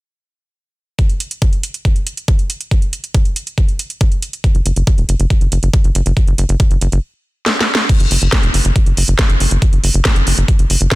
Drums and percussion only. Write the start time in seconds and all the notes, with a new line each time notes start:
0.99 kick, closed hi-hat
1.09 closed hi-hat
1.20 closed hi-hat
1.31 closed hi-hat
1.42 kick, closed hi-hat
1.53 closed hi-hat
1.63 closed hi-hat
1.74 closed hi-hat
1.85 kick, closed hi-hat
1.96 closed hi-hat
2.07 closed hi-hat
2.17 closed hi-hat
2.28 kick, closed hi-hat
2.39 closed hi-hat
2.50 closed hi-hat
2.61 closed hi-hat
2.71 kick, closed hi-hat
2.82 closed hi-hat
2.93 closed hi-hat
3.04 closed hi-hat
3.15 kick, closed hi-hat
3.25 closed hi-hat
3.36 closed hi-hat
3.47 closed hi-hat
3.58 kick, closed hi-hat
3.69 closed hi-hat
3.79 closed hi-hat
3.90 closed hi-hat
4.01 kick, closed hi-hat
4.12 closed hi-hat
4.22 closed hi-hat
4.33 closed hi-hat
4.44 kick, closed hi-hat
4.55 closed hi-hat
4.66 closed hi-hat
4.76 closed hi-hat
4.87 kick, closed hi-hat
4.98 closed hi-hat
5.09 closed hi-hat
5.20 closed hi-hat
5.30 kick, closed hi-hat
5.41 closed hi-hat
5.52 closed hi-hat
5.63 closed hi-hat
5.74 kick, closed hi-hat
5.84 closed hi-hat
5.95 closed hi-hat
6.06 closed hi-hat
6.17 kick, closed hi-hat
6.27 closed hi-hat
6.38 closed hi-hat
6.49 closed hi-hat
6.60 kick, closed hi-hat
6.71 closed hi-hat
6.81 closed hi-hat
6.92 closed hi-hat
7.46 snare
7.61 snare
7.75 snare
7.89 kick, closed hi-hat, crash
8.00 closed hi-hat
8.11 open hi-hat
8.22 closed hi-hat
8.32 kick, snare, closed hi-hat
8.43 closed hi-hat
8.54 open hi-hat
8.65 closed hi-hat
8.76 kick, closed hi-hat
8.86 closed hi-hat
8.97 open hi-hat
9.08 closed hi-hat
9.19 kick, snare, closed hi-hat
9.30 closed hi-hat
9.40 open hi-hat
9.51 closed hi-hat
9.62 kick, closed hi-hat
9.73 closed hi-hat
9.84 open hi-hat
9.94 closed hi-hat
10.05 kick, snare, closed hi-hat
10.16 closed hi-hat
10.27 open hi-hat
10.38 closed hi-hat
10.48 kick, closed hi-hat
10.59 closed hi-hat
10.70 open hi-hat
10.81 closed hi-hat
10.92 kick, snare, closed hi-hat